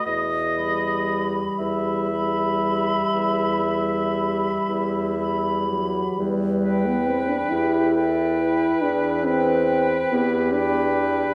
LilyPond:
<<
  \new Staff \with { instrumentName = "Flute" } { \time 12/8 \key e \minor \tempo 4. = 43 r8 b''4. b''4. b''4. b''4 | r8 g''4. g''4. g''4. g''4 | }
  \new Staff \with { instrumentName = "Oboe" } { \time 12/8 \key e \minor dis''4 r8 e''1 r8 | r8 b'4. b'4. b'4. b'4 | }
  \new Staff \with { instrumentName = "Clarinet" } { \time 12/8 \key e \minor r8 g'4. g'4. g'4. g'4 | b'4. g'8 a'8 b'2 g'4. | }
  \new Staff \with { instrumentName = "French horn" } { \time 12/8 \key e \minor r8 g4. g4. g4. g8 fis8 | g8. b16 c'16 d'16 e'4. d'8 c'4 b8 d'4 | }
  \new Staff \with { instrumentName = "Bassoon" } { \clef bass \time 12/8 \key e \minor e,4. e,4. e,4. e,4. | e,4. e,4. e,4. e,4. | }
>>